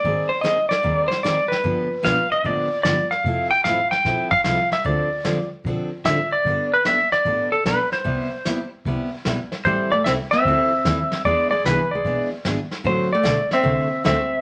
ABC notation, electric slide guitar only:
X:1
M:4/4
L:1/8
Q:"Swing" 1/4=150
K:Gmix
V:1 name="Electric slide guitar"
d c _e d2 c d B- | B3 z3 d f- | f g f g2 f f e | d3 z3 e d- |
d B e d2 A B c- | c3 z4 z | c d e e4- e | d d B d2 z3 |
c d2 e3 e2 |]